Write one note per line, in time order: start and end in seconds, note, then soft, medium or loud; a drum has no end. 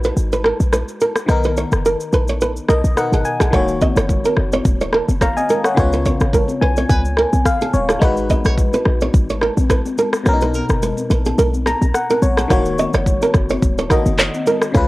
0.00 0.12 A#1 medium
0.00 1.24 G#3 medium
0.00 1.25 D#4 medium
0.00 1.25 F#4 medium
0.00 1.26 B4 medium
0.00 shaker soft
0.05 0.13 B4 medium
0.17 0.53 G#1 medium
0.17 shaker medium
0.32 0.41 B4 medium
0.32 shaker soft
0.44 0.56 A#4 medium
0.44 cross-stick medium
0.60 0.83 A#1 medium
0.60 shaker medium
0.73 0.84 B4 medium
0.73 cross-stick medium
0.73 shaker medium
0.88 shaker soft
1.01 1.12 A#4 medium
1.01 shaker medium
1.16 cross-stick loud
1.16 shaker medium
1.26 1.65 B1 loud
1.26 2.92 D#3 medium
1.26 2.93 B3 medium
1.26 2.94 D#4 medium
1.26 cross-stick medium
1.26 shaker medium
1.31 2.95 A#4 medium
1.44 1.53 B4 medium
1.44 shaker soft
1.57 1.68 C#5 medium
1.57 shaker medium
1.72 1.96 F#1 medium
1.72 cross-stick medium
1.72 shaker medium
1.85 1.96 A#4 medium
1.85 shaker medium
2.00 shaker medium
2.13 2.60 A#1 medium
2.13 2.24 B4 medium
2.13 shaker soft
2.28 2.38 C#5 medium
2.28 shaker soft
2.41 2.52 B4 medium
2.41 shaker medium
2.56 shaker soft
2.69 2.82 B1 loud
2.69 2.80 A#4 medium
2.69 2.95 D#5 medium
2.69 cross-stick medium
2.69 shaker medium
2.84 2.95 A#1 loud
2.84 shaker medium
2.96 3.52 B2 medium
2.96 3.53 B3 medium
2.96 3.53 D#4 medium
2.96 3.54 A#4 medium
2.96 3.23 F#5 medium
2.96 cross-stick medium
2.96 shaker medium
3.12 3.23 G#1 medium
3.12 3.22 G#4 medium
3.12 shaker soft
3.25 3.51 G#5 medium
3.25 shaker medium
3.40 3.51 A#1 medium
3.40 3.50 G#4 medium
3.40 cross-stick loud
3.40 shaker medium
3.50 3.89 D#1 loud
3.50 5.72 D#3 medium
3.50 5.73 A#3 medium
3.50 5.74 F#4 medium
3.50 3.64 C#5 medium
3.50 kick loud
3.50 cross-stick medium
3.50 low conga medium
3.50 shaker medium
3.55 5.19 C#5 medium
3.68 shaker soft
3.81 3.92 D#5 medium
3.81 kick medium
3.81 high conga medium
3.81 shaker medium
3.96 4.20 F#1 medium
3.96 4.06 C#5 medium
3.96 cross-stick medium
3.96 shaker medium
4.09 kick medium
4.09 low conga medium
4.09 shaker medium
4.24 4.34 A#4 medium
4.24 high conga medium
4.24 shaker medium
4.37 4.60 F#1 loud
4.37 cross-stick medium
4.52 4.62 C#5 medium
4.52 high conga medium
4.52 shaker soft
4.65 5.01 D#1 medium
4.65 kick loud
4.65 low conga medium
4.65 shaker medium
4.81 4.90 C#5 medium
4.81 shaker soft
4.93 5.04 A#4 medium
4.93 cross-stick medium
5.09 5.32 F#1 medium
5.09 high conga medium
5.09 shaker medium
5.21 5.32 C#5 medium
5.21 5.36 F5 medium
5.21 5.36 A#5 medium
5.21 kick medium
5.21 cross-stick medium
5.21 shaker medium
5.37 5.64 D#5 medium
5.37 5.63 G#5 medium
5.37 high conga medium
5.37 shaker soft
5.49 5.60 A#4 medium
5.49 high conga medium
5.49 low conga medium
5.49 shaker medium
5.64 5.78 C#5 medium
5.64 5.91 F#5 medium
5.64 cross-stick loud
5.64 shaker medium
5.75 6.13 C#2 loud
5.75 7.96 C#3 medium
5.75 7.97 B3 medium
5.75 7.98 F4 medium
5.75 kick loud
5.75 cross-stick medium
5.75 low conga medium
5.75 shaker medium
5.80 7.72 C#5 medium
5.92 6.02 B4 medium
5.92 shaker soft
6.05 6.16 C#5 medium
6.05 kick medium
6.05 high conga medium
6.05 shaker medium
6.20 6.44 G#1 medium
6.20 cross-stick medium
6.20 shaker medium
6.33 6.44 A#4 medium
6.33 kick medium
6.33 low conga medium
6.33 shaker medium
6.48 high conga medium
6.48 shaker medium
6.61 6.85 B1 medium
6.61 6.73 B4 medium
6.61 6.88 G#5 medium
6.76 6.90 C#5 medium
6.76 high conga medium
6.76 shaker soft
6.89 7.26 C#2 loud
6.89 7.01 B4 medium
6.89 7.42 G#5 medium
6.89 kick loud
6.89 low conga medium
6.89 shaker medium
7.05 shaker soft
7.17 7.29 A#4 medium
7.17 cross-stick medium
7.33 7.43 B1 medium
7.33 high conga medium
7.33 shaker medium
7.45 7.72 F5 medium
7.45 kick medium
7.45 cross-stick medium
7.45 shaker medium
7.61 7.70 G#4 medium
7.61 high conga medium
7.61 shaker soft
7.73 7.97 D#1 medium
7.73 8.00 C#5 medium
7.73 high conga medium
7.73 low conga medium
7.73 shaker medium
7.89 7.98 G#4 medium
7.89 cross-stick loud
7.89 shaker medium
7.99 8.38 G#1 loud
7.99 10.21 G#3 medium
7.99 10.22 D#4 medium
7.99 10.22 F#4 medium
7.99 8.13 C#5 medium
7.99 kick loud
7.99 cross-stick medium
7.99 low conga medium
7.99 shaker medium
8.04 10.23 B4 medium
8.17 shaker soft
8.30 8.46 D#5 medium
8.30 kick medium
8.30 high conga medium
8.30 shaker medium
8.45 8.68 A#1 medium
8.45 8.54 C#5 medium
8.45 cross-stick medium
8.45 shaker medium
8.58 kick medium
8.58 low conga medium
8.58 shaker medium
8.73 8.82 B4 medium
8.73 high conga medium
8.73 shaker medium
8.85 9.09 A#1 medium
8.85 cross-stick medium
9.01 9.10 C#5 medium
9.01 high conga medium
9.01 shaker soft
9.14 9.50 G#1 loud
9.14 kick loud
9.14 low conga medium
9.14 shaker medium
9.29 9.38 C#5 medium
9.29 shaker soft
9.41 9.53 A#4 medium
9.41 cross-stick medium
9.57 9.81 A#1 loud
9.57 high conga medium
9.57 shaker medium
9.70 9.81 B4 medium
9.70 kick medium
9.70 cross-stick medium
9.70 shaker medium
9.86 high conga medium
9.86 shaker soft
9.98 10.09 A#4 medium
9.98 high conga medium
9.98 low conga medium
9.98 shaker medium
10.13 cross-stick loud
10.13 shaker medium
10.24 10.62 B1 loud
10.24 12.45 B2 medium
10.24 12.46 B3 medium
10.24 10.34 C#4 medium
10.24 cross-stick medium
10.24 low conga medium
10.24 shaker medium
10.29 12.48 A#4 medium
10.33 12.50 D#4 medium
10.41 10.55 B4 medium
10.41 shaker soft
10.54 10.65 A#4 medium
10.54 high conga medium
10.54 shaker medium
10.69 10.93 F#1 medium
10.69 cross-stick medium
10.69 shaker medium
10.82 10.93 B4 medium
10.82 low conga medium
10.82 shaker medium
10.97 high conga medium
10.97 shaker medium
11.10 11.33 A#1 medium
11.10 11.21 B4 medium
11.10 shaker soft
11.25 11.35 G#4 medium
11.25 high conga medium
11.25 shaker soft
11.38 11.74 B1 loud
11.38 11.49 A#4 medium
11.38 low conga medium
11.38 shaker medium
11.53 high conga medium
11.53 shaker soft
11.66 11.77 G#4 medium
11.66 11.92 A#5 medium
11.66 cross-stick medium
11.66 shaker medium
11.82 11.92 A#1 medium
11.82 high conga medium
11.82 shaker medium
11.94 12.20 F#5 medium
11.94 cross-stick medium
11.94 shaker medium
12.10 12.19 A#4 medium
12.10 high conga medium
12.10 shaker soft
12.22 12.46 A#1 medium
12.22 12.48 C#5 medium
12.22 high conga medium
12.22 low conga medium
12.22 shaker medium
12.37 12.47 G#4 medium
12.37 cross-stick loud
12.37 shaker medium
12.48 12.86 D#1 loud
12.48 13.86 D#3 medium
12.48 13.87 A#3 medium
12.48 13.88 F#4 medium
12.48 12.61 C#5 medium
12.48 kick loud
12.48 cross-stick medium
12.48 low conga medium
12.48 shaker medium
12.53 13.89 C#5 medium
12.65 shaker soft
12.78 12.89 D#5 medium
12.78 high conga medium
12.78 shaker medium
12.93 13.17 F#1 medium
12.93 13.03 C#5 medium
12.93 cross-stick medium
12.93 shaker medium
13.06 kick medium
13.06 low conga medium
13.06 shaker medium
13.21 13.31 A#4 medium
13.21 high conga medium
13.21 shaker medium
13.34 13.58 F#1 loud
13.34 kick medium
13.34 cross-stick medium
13.34 shaker soft
13.49 13.59 C#5 medium
13.49 high conga medium
13.49 shaker soft
13.62 13.99 D#1 medium
13.62 kick medium
13.62 low conga medium
13.62 shaker medium
13.78 13.87 C#5 medium
13.78 high conga medium
13.78 shaker soft
13.89 14.74 D#3 medium
13.89 14.74 A#3 medium
13.89 14.75 F#4 medium
13.89 14.01 A#4 medium
13.89 14.75 D#5 medium
13.89 kick loud
13.89 cross-stick medium
13.89 shaker medium
14.06 14.29 F#1 medium
14.06 high conga medium
14.06 shaker medium
14.19 14.30 C#5 medium
14.19 cross-stick medium
14.19 clap medium
14.19 shaker medium
14.34 high conga medium
14.34 shaker soft
14.46 14.58 A#4 medium
14.46 high conga medium
14.46 low conga medium
14.46 shaker medium
14.62 cross-stick loud
14.62 shaker medium
14.72 14.88 C#2 loud
14.72 14.88 C#3 medium
14.72 14.88 C#4 medium
14.72 14.88 F4 medium
14.72 kick loud
14.72 cross-stick medium
14.72 low conga medium
14.72 shaker medium
14.77 14.88 B4 medium